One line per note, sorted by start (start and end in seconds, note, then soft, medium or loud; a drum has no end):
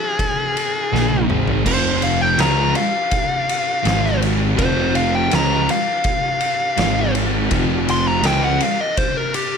0.00 1.25 G#4 loud
0.19 kick loud
0.19 ride loud
0.57 ride medium
0.92 1.27 A#1 loud
0.92 1.28 A#2 medium
0.92 1.28 F3 medium
0.92 1.28 A#3 loud
0.92 snare medium
1.11 high tom medium
1.29 1.63 G#1 loud
1.29 1.64 G#2 loud
1.29 1.65 D#3 loud
1.29 1.65 G#3 loud
1.29 mid tom medium
1.48 floor tom loud
1.64 2.35 F1 medium
1.64 2.37 F2 loud
1.64 2.38 C3 loud
1.64 2.38 F3 loud
1.64 2.02 C5 loud
1.64 kick loud
1.64 crash loud
2.02 2.21 F5 medium
2.02 ride medium
2.21 2.39 G5 medium
2.38 2.73 C#2 loud
2.38 2.74 C#3 loud
2.38 2.75 G#3 loud
2.38 2.75 C#4 medium
2.38 2.75 A#5 loud
2.38 snare loud
2.38 ride loud
2.75 4.18 F5 loud
2.75 ride medium
3.11 kick loud
3.11 ride loud
3.49 ride medium
3.84 4.55 G#1 medium
3.84 4.56 G#2 medium
3.84 4.57 D#3 medium
3.84 4.57 G#3 loud
3.84 snare loud
3.84 ride loud
4.06 snare soft
4.22 ride medium
4.57 5.28 F1 loud
4.57 5.30 F2 medium
4.57 5.29 C3 loud
4.57 5.29 F3 loud
4.57 4.94 C5 loud
4.57 kick loud
4.57 ride loud
4.95 5.14 F5 medium
4.95 ride medium
5.15 5.34 G5 medium
5.30 5.67 C#2 loud
5.30 5.66 C#3 loud
5.30 5.66 G#3 loud
5.30 5.67 C#4 medium
5.30 snare loud
5.30 ride loud
5.34 5.69 A#5 loud
5.69 7.12 F5 loud
5.69 ride medium
6.04 kick loud
6.04 ride loud
6.41 ride medium
6.77 7.47 G#1 loud
6.77 7.50 G#2 medium
6.77 7.50 D#3 loud
6.77 7.50 G#3 loud
6.77 snare loud
6.77 ride loud
7.15 ride medium
7.50 8.21 F1 loud
7.50 8.23 F2 loud
7.50 8.22 C3 loud
7.50 8.23 F3 loud
7.50 kick loud
7.50 ride loud
7.89 8.07 C6 loud
7.89 ride medium
8.08 8.26 A#5 loud
8.23 8.58 C#2 loud
8.23 8.59 C#3 medium
8.23 8.60 G#3 loud
8.23 8.60 C#4 medium
8.23 8.43 G5 loud
8.23 snare loud
8.23 ride loud
8.44 8.62 F#5 medium
8.61 8.80 F5 medium
8.61 ride medium
8.80 8.98 D#5 loud
8.97 9.17 C5 medium
8.97 kick loud
8.97 ride loud
9.17 9.34 A#4 medium
9.34 9.57 G4 loud
9.34 ride medium